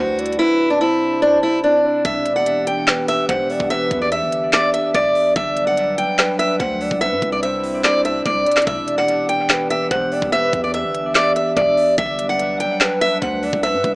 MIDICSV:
0, 0, Header, 1, 6, 480
1, 0, Start_track
1, 0, Key_signature, 1, "minor"
1, 0, Tempo, 413793
1, 457, Time_signature, 4, 2, 24, 8
1, 16182, End_track
2, 0, Start_track
2, 0, Title_t, "Steel-string acoustic guitar"
2, 0, Program_c, 0, 25
2, 0, Note_on_c, 0, 66, 86
2, 426, Note_off_c, 0, 66, 0
2, 451, Note_on_c, 0, 64, 111
2, 792, Note_off_c, 0, 64, 0
2, 814, Note_on_c, 0, 62, 80
2, 906, Note_off_c, 0, 62, 0
2, 938, Note_on_c, 0, 64, 85
2, 1389, Note_off_c, 0, 64, 0
2, 1416, Note_on_c, 0, 62, 95
2, 1598, Note_off_c, 0, 62, 0
2, 1658, Note_on_c, 0, 64, 86
2, 1839, Note_off_c, 0, 64, 0
2, 1897, Note_on_c, 0, 62, 88
2, 2348, Note_off_c, 0, 62, 0
2, 2376, Note_on_c, 0, 76, 101
2, 2715, Note_off_c, 0, 76, 0
2, 2736, Note_on_c, 0, 78, 85
2, 3075, Note_off_c, 0, 78, 0
2, 3097, Note_on_c, 0, 79, 68
2, 3548, Note_off_c, 0, 79, 0
2, 3577, Note_on_c, 0, 76, 92
2, 3759, Note_off_c, 0, 76, 0
2, 3817, Note_on_c, 0, 78, 80
2, 4268, Note_off_c, 0, 78, 0
2, 4295, Note_on_c, 0, 76, 114
2, 4634, Note_off_c, 0, 76, 0
2, 4659, Note_on_c, 0, 74, 76
2, 4749, Note_off_c, 0, 74, 0
2, 4777, Note_on_c, 0, 76, 85
2, 5228, Note_off_c, 0, 76, 0
2, 5259, Note_on_c, 0, 74, 95
2, 5440, Note_off_c, 0, 74, 0
2, 5496, Note_on_c, 0, 76, 80
2, 5678, Note_off_c, 0, 76, 0
2, 5737, Note_on_c, 0, 74, 90
2, 6188, Note_off_c, 0, 74, 0
2, 6217, Note_on_c, 0, 76, 101
2, 6555, Note_off_c, 0, 76, 0
2, 6576, Note_on_c, 0, 78, 85
2, 6915, Note_off_c, 0, 78, 0
2, 6936, Note_on_c, 0, 79, 70
2, 7387, Note_off_c, 0, 79, 0
2, 7413, Note_on_c, 0, 76, 86
2, 7596, Note_off_c, 0, 76, 0
2, 7651, Note_on_c, 0, 78, 91
2, 8105, Note_off_c, 0, 78, 0
2, 8131, Note_on_c, 0, 76, 113
2, 8472, Note_off_c, 0, 76, 0
2, 8494, Note_on_c, 0, 74, 81
2, 8586, Note_off_c, 0, 74, 0
2, 8615, Note_on_c, 0, 76, 88
2, 9067, Note_off_c, 0, 76, 0
2, 9097, Note_on_c, 0, 74, 100
2, 9279, Note_off_c, 0, 74, 0
2, 9339, Note_on_c, 0, 76, 90
2, 9520, Note_off_c, 0, 76, 0
2, 9577, Note_on_c, 0, 74, 90
2, 10028, Note_off_c, 0, 74, 0
2, 10054, Note_on_c, 0, 76, 97
2, 10394, Note_off_c, 0, 76, 0
2, 10415, Note_on_c, 0, 78, 87
2, 10754, Note_off_c, 0, 78, 0
2, 10775, Note_on_c, 0, 79, 66
2, 11227, Note_off_c, 0, 79, 0
2, 11257, Note_on_c, 0, 76, 89
2, 11439, Note_off_c, 0, 76, 0
2, 11494, Note_on_c, 0, 78, 81
2, 11947, Note_off_c, 0, 78, 0
2, 11975, Note_on_c, 0, 76, 118
2, 12314, Note_off_c, 0, 76, 0
2, 12339, Note_on_c, 0, 74, 77
2, 12429, Note_off_c, 0, 74, 0
2, 12458, Note_on_c, 0, 76, 84
2, 12909, Note_off_c, 0, 76, 0
2, 12941, Note_on_c, 0, 74, 93
2, 13121, Note_off_c, 0, 74, 0
2, 13178, Note_on_c, 0, 76, 79
2, 13359, Note_off_c, 0, 76, 0
2, 13417, Note_on_c, 0, 74, 92
2, 13868, Note_off_c, 0, 74, 0
2, 13897, Note_on_c, 0, 76, 102
2, 14235, Note_off_c, 0, 76, 0
2, 14258, Note_on_c, 0, 78, 85
2, 14596, Note_off_c, 0, 78, 0
2, 14616, Note_on_c, 0, 79, 73
2, 15068, Note_off_c, 0, 79, 0
2, 15095, Note_on_c, 0, 76, 91
2, 15277, Note_off_c, 0, 76, 0
2, 15332, Note_on_c, 0, 78, 90
2, 15786, Note_off_c, 0, 78, 0
2, 15812, Note_on_c, 0, 76, 110
2, 16153, Note_off_c, 0, 76, 0
2, 16182, End_track
3, 0, Start_track
3, 0, Title_t, "Soft synth lead"
3, 0, Program_c, 1, 80
3, 0, Note_on_c, 1, 72, 88
3, 206, Note_off_c, 1, 72, 0
3, 218, Note_on_c, 1, 74, 79
3, 445, Note_off_c, 1, 74, 0
3, 457, Note_on_c, 1, 71, 100
3, 908, Note_off_c, 1, 71, 0
3, 939, Note_on_c, 1, 72, 87
3, 2092, Note_off_c, 1, 72, 0
3, 2137, Note_on_c, 1, 74, 81
3, 2365, Note_off_c, 1, 74, 0
3, 2378, Note_on_c, 1, 74, 111
3, 3291, Note_off_c, 1, 74, 0
3, 3338, Note_on_c, 1, 71, 83
3, 3789, Note_off_c, 1, 71, 0
3, 3815, Note_on_c, 1, 72, 88
3, 4044, Note_off_c, 1, 72, 0
3, 4056, Note_on_c, 1, 74, 90
3, 4284, Note_off_c, 1, 74, 0
3, 4295, Note_on_c, 1, 71, 102
3, 4747, Note_off_c, 1, 71, 0
3, 4778, Note_on_c, 1, 76, 110
3, 6171, Note_off_c, 1, 76, 0
3, 6219, Note_on_c, 1, 74, 118
3, 7132, Note_off_c, 1, 74, 0
3, 7174, Note_on_c, 1, 71, 84
3, 7626, Note_off_c, 1, 71, 0
3, 7661, Note_on_c, 1, 72, 87
3, 7887, Note_off_c, 1, 72, 0
3, 7899, Note_on_c, 1, 74, 81
3, 8126, Note_off_c, 1, 74, 0
3, 8139, Note_on_c, 1, 71, 101
3, 8589, Note_off_c, 1, 71, 0
3, 8619, Note_on_c, 1, 72, 84
3, 9772, Note_off_c, 1, 72, 0
3, 9819, Note_on_c, 1, 74, 84
3, 10046, Note_off_c, 1, 74, 0
3, 10058, Note_on_c, 1, 74, 116
3, 10971, Note_off_c, 1, 74, 0
3, 11017, Note_on_c, 1, 71, 84
3, 11468, Note_off_c, 1, 71, 0
3, 11495, Note_on_c, 1, 72, 87
3, 11724, Note_off_c, 1, 72, 0
3, 11736, Note_on_c, 1, 74, 88
3, 11964, Note_off_c, 1, 74, 0
3, 11975, Note_on_c, 1, 71, 102
3, 12427, Note_off_c, 1, 71, 0
3, 12457, Note_on_c, 1, 76, 109
3, 13850, Note_off_c, 1, 76, 0
3, 13896, Note_on_c, 1, 74, 118
3, 14810, Note_off_c, 1, 74, 0
3, 14853, Note_on_c, 1, 71, 83
3, 15306, Note_off_c, 1, 71, 0
3, 15338, Note_on_c, 1, 72, 88
3, 15566, Note_off_c, 1, 72, 0
3, 15577, Note_on_c, 1, 74, 82
3, 15805, Note_off_c, 1, 74, 0
3, 15818, Note_on_c, 1, 71, 102
3, 16182, Note_off_c, 1, 71, 0
3, 16182, End_track
4, 0, Start_track
4, 0, Title_t, "Ambient pad"
4, 0, Program_c, 2, 92
4, 0, Note_on_c, 2, 55, 78
4, 0, Note_on_c, 2, 62, 74
4, 0, Note_on_c, 2, 71, 90
4, 0, Note_on_c, 2, 78, 76
4, 438, Note_off_c, 2, 71, 0
4, 439, Note_off_c, 2, 55, 0
4, 439, Note_off_c, 2, 78, 0
4, 457, Note_on_c, 2, 48, 79
4, 457, Note_on_c, 2, 60, 73
4, 458, Note_on_c, 2, 64, 93
4, 2330, Note_off_c, 2, 62, 0
4, 2358, Note_off_c, 2, 48, 0
4, 2358, Note_off_c, 2, 60, 0
4, 2358, Note_off_c, 2, 64, 0
4, 2375, Note_on_c, 2, 59, 72
4, 2376, Note_on_c, 2, 52, 82
4, 2376, Note_on_c, 2, 62, 75
4, 2376, Note_on_c, 2, 67, 91
4, 6178, Note_off_c, 2, 52, 0
4, 6178, Note_off_c, 2, 59, 0
4, 6178, Note_off_c, 2, 67, 0
4, 6216, Note_on_c, 2, 55, 83
4, 6217, Note_on_c, 2, 54, 76
4, 6217, Note_on_c, 2, 71, 89
4, 8117, Note_off_c, 2, 55, 0
4, 8118, Note_off_c, 2, 54, 0
4, 8118, Note_off_c, 2, 71, 0
4, 8136, Note_on_c, 2, 60, 75
4, 8136, Note_on_c, 2, 64, 89
4, 8137, Note_on_c, 2, 48, 79
4, 10037, Note_off_c, 2, 48, 0
4, 10037, Note_off_c, 2, 60, 0
4, 10037, Note_off_c, 2, 64, 0
4, 10055, Note_on_c, 2, 67, 92
4, 10056, Note_on_c, 2, 59, 73
4, 10057, Note_on_c, 2, 52, 84
4, 13850, Note_off_c, 2, 62, 0
4, 13857, Note_off_c, 2, 67, 0
4, 13858, Note_off_c, 2, 52, 0
4, 13858, Note_off_c, 2, 59, 0
4, 13897, Note_on_c, 2, 71, 93
4, 13898, Note_on_c, 2, 55, 82
4, 13898, Note_on_c, 2, 62, 77
4, 13899, Note_on_c, 2, 54, 77
4, 15798, Note_off_c, 2, 55, 0
4, 15798, Note_off_c, 2, 71, 0
4, 15799, Note_off_c, 2, 54, 0
4, 15816, Note_on_c, 2, 48, 83
4, 15816, Note_on_c, 2, 60, 76
4, 15816, Note_on_c, 2, 64, 88
4, 16182, Note_off_c, 2, 48, 0
4, 16182, Note_off_c, 2, 60, 0
4, 16182, Note_off_c, 2, 62, 0
4, 16182, Note_off_c, 2, 64, 0
4, 16182, End_track
5, 0, Start_track
5, 0, Title_t, "808-style bass"
5, 0, Program_c, 3, 38
5, 0, Note_on_c, 3, 38, 105
5, 438, Note_off_c, 3, 38, 0
5, 2377, Note_on_c, 3, 28, 112
5, 3771, Note_off_c, 3, 28, 0
5, 3817, Note_on_c, 3, 28, 108
5, 4162, Note_off_c, 3, 28, 0
5, 4176, Note_on_c, 3, 28, 100
5, 4522, Note_off_c, 3, 28, 0
5, 4536, Note_on_c, 3, 40, 107
5, 4898, Note_on_c, 3, 31, 101
5, 4916, Note_off_c, 3, 40, 0
5, 5240, Note_off_c, 3, 31, 0
5, 5737, Note_on_c, 3, 28, 108
5, 5967, Note_off_c, 3, 28, 0
5, 6217, Note_on_c, 3, 31, 115
5, 7023, Note_off_c, 3, 31, 0
5, 7657, Note_on_c, 3, 38, 110
5, 8002, Note_off_c, 3, 38, 0
5, 8016, Note_on_c, 3, 36, 103
5, 8257, Note_on_c, 3, 43, 103
5, 8274, Note_off_c, 3, 36, 0
5, 8371, Note_off_c, 3, 43, 0
5, 8377, Note_on_c, 3, 36, 110
5, 9530, Note_off_c, 3, 36, 0
5, 9577, Note_on_c, 3, 36, 110
5, 9807, Note_off_c, 3, 36, 0
5, 10058, Note_on_c, 3, 28, 111
5, 11451, Note_off_c, 3, 28, 0
5, 11496, Note_on_c, 3, 28, 107
5, 11842, Note_off_c, 3, 28, 0
5, 11856, Note_on_c, 3, 28, 101
5, 12202, Note_off_c, 3, 28, 0
5, 12217, Note_on_c, 3, 40, 112
5, 12577, Note_on_c, 3, 31, 102
5, 12595, Note_off_c, 3, 40, 0
5, 12919, Note_off_c, 3, 31, 0
5, 13417, Note_on_c, 3, 28, 111
5, 13647, Note_off_c, 3, 28, 0
5, 13898, Note_on_c, 3, 31, 113
5, 14704, Note_off_c, 3, 31, 0
5, 15336, Note_on_c, 3, 38, 108
5, 15682, Note_off_c, 3, 38, 0
5, 15695, Note_on_c, 3, 36, 107
5, 15936, Note_on_c, 3, 43, 105
5, 15953, Note_off_c, 3, 36, 0
5, 16050, Note_off_c, 3, 43, 0
5, 16056, Note_on_c, 3, 36, 113
5, 16182, Note_off_c, 3, 36, 0
5, 16182, End_track
6, 0, Start_track
6, 0, Title_t, "Drums"
6, 218, Note_on_c, 9, 42, 85
6, 298, Note_off_c, 9, 42, 0
6, 298, Note_on_c, 9, 42, 69
6, 377, Note_off_c, 9, 42, 0
6, 377, Note_on_c, 9, 42, 52
6, 493, Note_off_c, 9, 42, 0
6, 2377, Note_on_c, 9, 36, 116
6, 2377, Note_on_c, 9, 42, 82
6, 2493, Note_off_c, 9, 36, 0
6, 2493, Note_off_c, 9, 42, 0
6, 2616, Note_on_c, 9, 42, 91
6, 2732, Note_off_c, 9, 42, 0
6, 2857, Note_on_c, 9, 42, 72
6, 2973, Note_off_c, 9, 42, 0
6, 3098, Note_on_c, 9, 42, 90
6, 3214, Note_off_c, 9, 42, 0
6, 3336, Note_on_c, 9, 39, 94
6, 3337, Note_on_c, 9, 38, 121
6, 3337, Note_on_c, 9, 42, 79
6, 3452, Note_off_c, 9, 39, 0
6, 3453, Note_off_c, 9, 38, 0
6, 3453, Note_off_c, 9, 42, 0
6, 3577, Note_on_c, 9, 42, 72
6, 3693, Note_off_c, 9, 42, 0
6, 3817, Note_on_c, 9, 36, 94
6, 3817, Note_on_c, 9, 42, 96
6, 3933, Note_off_c, 9, 36, 0
6, 3933, Note_off_c, 9, 42, 0
6, 4057, Note_on_c, 9, 46, 67
6, 4173, Note_off_c, 9, 46, 0
6, 4176, Note_on_c, 9, 36, 96
6, 4292, Note_off_c, 9, 36, 0
6, 4296, Note_on_c, 9, 42, 82
6, 4412, Note_off_c, 9, 42, 0
6, 4536, Note_on_c, 9, 36, 88
6, 4536, Note_on_c, 9, 42, 94
6, 4652, Note_off_c, 9, 36, 0
6, 4652, Note_off_c, 9, 42, 0
6, 4777, Note_on_c, 9, 42, 72
6, 4893, Note_off_c, 9, 42, 0
6, 5016, Note_on_c, 9, 42, 94
6, 5132, Note_off_c, 9, 42, 0
6, 5255, Note_on_c, 9, 39, 100
6, 5256, Note_on_c, 9, 38, 118
6, 5256, Note_on_c, 9, 42, 80
6, 5371, Note_off_c, 9, 39, 0
6, 5372, Note_off_c, 9, 38, 0
6, 5372, Note_off_c, 9, 42, 0
6, 5497, Note_on_c, 9, 42, 73
6, 5613, Note_off_c, 9, 42, 0
6, 5736, Note_on_c, 9, 36, 93
6, 5736, Note_on_c, 9, 42, 93
6, 5852, Note_off_c, 9, 36, 0
6, 5852, Note_off_c, 9, 42, 0
6, 5977, Note_on_c, 9, 46, 66
6, 6093, Note_off_c, 9, 46, 0
6, 6217, Note_on_c, 9, 36, 114
6, 6217, Note_on_c, 9, 42, 82
6, 6333, Note_off_c, 9, 36, 0
6, 6333, Note_off_c, 9, 42, 0
6, 6457, Note_on_c, 9, 42, 91
6, 6573, Note_off_c, 9, 42, 0
6, 6698, Note_on_c, 9, 42, 69
6, 6814, Note_off_c, 9, 42, 0
6, 6939, Note_on_c, 9, 42, 91
6, 7055, Note_off_c, 9, 42, 0
6, 7176, Note_on_c, 9, 39, 96
6, 7178, Note_on_c, 9, 38, 120
6, 7178, Note_on_c, 9, 42, 81
6, 7292, Note_off_c, 9, 39, 0
6, 7294, Note_off_c, 9, 38, 0
6, 7294, Note_off_c, 9, 42, 0
6, 7417, Note_on_c, 9, 42, 72
6, 7533, Note_off_c, 9, 42, 0
6, 7657, Note_on_c, 9, 36, 95
6, 7657, Note_on_c, 9, 42, 91
6, 7773, Note_off_c, 9, 36, 0
6, 7773, Note_off_c, 9, 42, 0
6, 7897, Note_on_c, 9, 46, 67
6, 8013, Note_off_c, 9, 46, 0
6, 8017, Note_on_c, 9, 36, 97
6, 8133, Note_off_c, 9, 36, 0
6, 8138, Note_on_c, 9, 42, 83
6, 8254, Note_off_c, 9, 42, 0
6, 8377, Note_on_c, 9, 36, 87
6, 8378, Note_on_c, 9, 42, 90
6, 8493, Note_off_c, 9, 36, 0
6, 8494, Note_off_c, 9, 42, 0
6, 8618, Note_on_c, 9, 42, 73
6, 8734, Note_off_c, 9, 42, 0
6, 8858, Note_on_c, 9, 46, 65
6, 8974, Note_off_c, 9, 46, 0
6, 9096, Note_on_c, 9, 39, 95
6, 9098, Note_on_c, 9, 38, 119
6, 9098, Note_on_c, 9, 42, 80
6, 9212, Note_off_c, 9, 39, 0
6, 9214, Note_off_c, 9, 38, 0
6, 9214, Note_off_c, 9, 42, 0
6, 9338, Note_on_c, 9, 42, 72
6, 9454, Note_off_c, 9, 42, 0
6, 9577, Note_on_c, 9, 36, 97
6, 9578, Note_on_c, 9, 42, 94
6, 9693, Note_off_c, 9, 36, 0
6, 9694, Note_off_c, 9, 42, 0
6, 9818, Note_on_c, 9, 42, 74
6, 9878, Note_off_c, 9, 42, 0
6, 9878, Note_on_c, 9, 42, 72
6, 9936, Note_on_c, 9, 39, 78
6, 9937, Note_off_c, 9, 42, 0
6, 9937, Note_on_c, 9, 42, 73
6, 9938, Note_on_c, 9, 38, 96
6, 9997, Note_off_c, 9, 42, 0
6, 9997, Note_on_c, 9, 42, 73
6, 10052, Note_off_c, 9, 39, 0
6, 10054, Note_off_c, 9, 38, 0
6, 10057, Note_off_c, 9, 42, 0
6, 10057, Note_on_c, 9, 42, 80
6, 10058, Note_on_c, 9, 36, 116
6, 10173, Note_off_c, 9, 42, 0
6, 10174, Note_off_c, 9, 36, 0
6, 10297, Note_on_c, 9, 42, 91
6, 10413, Note_off_c, 9, 42, 0
6, 10537, Note_on_c, 9, 42, 72
6, 10653, Note_off_c, 9, 42, 0
6, 10777, Note_on_c, 9, 42, 90
6, 10893, Note_off_c, 9, 42, 0
6, 11015, Note_on_c, 9, 39, 96
6, 11016, Note_on_c, 9, 38, 123
6, 11016, Note_on_c, 9, 42, 81
6, 11131, Note_off_c, 9, 39, 0
6, 11132, Note_off_c, 9, 38, 0
6, 11132, Note_off_c, 9, 42, 0
6, 11257, Note_on_c, 9, 42, 75
6, 11373, Note_off_c, 9, 42, 0
6, 11496, Note_on_c, 9, 36, 94
6, 11496, Note_on_c, 9, 42, 95
6, 11612, Note_off_c, 9, 36, 0
6, 11612, Note_off_c, 9, 42, 0
6, 11737, Note_on_c, 9, 46, 67
6, 11853, Note_off_c, 9, 46, 0
6, 11856, Note_on_c, 9, 36, 96
6, 11972, Note_off_c, 9, 36, 0
6, 11977, Note_on_c, 9, 42, 86
6, 12093, Note_off_c, 9, 42, 0
6, 12217, Note_on_c, 9, 36, 90
6, 12217, Note_on_c, 9, 42, 92
6, 12333, Note_off_c, 9, 36, 0
6, 12333, Note_off_c, 9, 42, 0
6, 12457, Note_on_c, 9, 42, 74
6, 12573, Note_off_c, 9, 42, 0
6, 12697, Note_on_c, 9, 42, 92
6, 12813, Note_off_c, 9, 42, 0
6, 12936, Note_on_c, 9, 39, 100
6, 12937, Note_on_c, 9, 38, 119
6, 12937, Note_on_c, 9, 42, 79
6, 13052, Note_off_c, 9, 39, 0
6, 13053, Note_off_c, 9, 38, 0
6, 13053, Note_off_c, 9, 42, 0
6, 13178, Note_on_c, 9, 42, 72
6, 13294, Note_off_c, 9, 42, 0
6, 13417, Note_on_c, 9, 36, 96
6, 13418, Note_on_c, 9, 42, 93
6, 13533, Note_off_c, 9, 36, 0
6, 13534, Note_off_c, 9, 42, 0
6, 13658, Note_on_c, 9, 46, 68
6, 13774, Note_off_c, 9, 46, 0
6, 13898, Note_on_c, 9, 36, 114
6, 13899, Note_on_c, 9, 42, 82
6, 14014, Note_off_c, 9, 36, 0
6, 14015, Note_off_c, 9, 42, 0
6, 14138, Note_on_c, 9, 42, 91
6, 14254, Note_off_c, 9, 42, 0
6, 14378, Note_on_c, 9, 42, 72
6, 14494, Note_off_c, 9, 42, 0
6, 14618, Note_on_c, 9, 42, 91
6, 14734, Note_off_c, 9, 42, 0
6, 14856, Note_on_c, 9, 39, 95
6, 14857, Note_on_c, 9, 38, 123
6, 14857, Note_on_c, 9, 42, 81
6, 14972, Note_off_c, 9, 39, 0
6, 14973, Note_off_c, 9, 38, 0
6, 14973, Note_off_c, 9, 42, 0
6, 15097, Note_on_c, 9, 42, 75
6, 15213, Note_off_c, 9, 42, 0
6, 15336, Note_on_c, 9, 36, 93
6, 15337, Note_on_c, 9, 42, 93
6, 15452, Note_off_c, 9, 36, 0
6, 15453, Note_off_c, 9, 42, 0
6, 15577, Note_on_c, 9, 46, 68
6, 15693, Note_off_c, 9, 46, 0
6, 15696, Note_on_c, 9, 36, 97
6, 15812, Note_off_c, 9, 36, 0
6, 15815, Note_on_c, 9, 42, 84
6, 15931, Note_off_c, 9, 42, 0
6, 16055, Note_on_c, 9, 42, 91
6, 16056, Note_on_c, 9, 36, 86
6, 16171, Note_off_c, 9, 42, 0
6, 16172, Note_off_c, 9, 36, 0
6, 16182, End_track
0, 0, End_of_file